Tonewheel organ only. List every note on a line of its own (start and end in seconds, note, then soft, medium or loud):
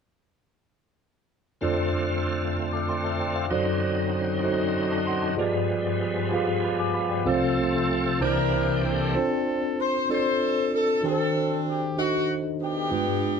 1.61 3.46 D3 soft
1.61 3.46 A3 soft
1.61 3.46 C4 soft
1.61 3.46 F4 medium
3.50 5.34 F#2 medium
3.50 5.34 D3 soft
3.50 5.35 F#3 soft
3.50 5.35 C4 soft
3.50 5.35 D#4 medium
5.39 7.23 F3 medium
5.39 7.23 G3 medium
5.39 7.23 G#3 soft
5.39 5.45 A#3 soft
5.46 7.27 B3 soft
7.26 8.20 C3 medium
7.26 8.20 F3 medium
7.26 8.20 A3 medium
7.26 8.20 C4 medium
7.26 8.20 A4 medium
8.21 8.28 D#3 soft
8.21 9.15 A#3 medium
8.21 9.15 C4 medium
8.21 9.15 D4 soft
8.21 9.15 G4 medium
8.28 9.18 E3 medium